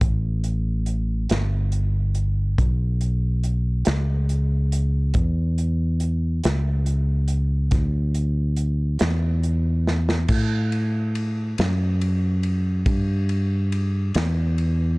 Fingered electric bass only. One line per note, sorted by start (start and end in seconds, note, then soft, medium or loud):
0.01 1.26 A1 medium
1.31 2.55 G1 medium
2.58 3.83 B1 medium
3.87 5.12 C#2 medium
5.15 6.40 E2 medium
6.45 7.69 C#2 medium
7.72 8.97 D2 medium
9.01 10.26 E2 medium
10.30 11.54 A2 medium
11.59 12.83 F#2 medium
12.86 14.11 G2 medium
14.15 14.98 E2 loud